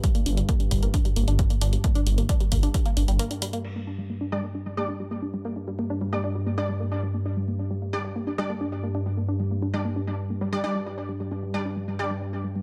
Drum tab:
CC |----------------|----------------|x---------------|----------------|
HH |xxoxxxoxxxoxxxox|xxoxxxoxxxoxxxox|----------------|----------------|
BD |o---o-o-o---o---|o---o-o-o-------|----------------|----------------|

CC |----------------|----------------|----------------|
HH |----------------|----------------|----------------|
BD |----------------|----------------|----------------|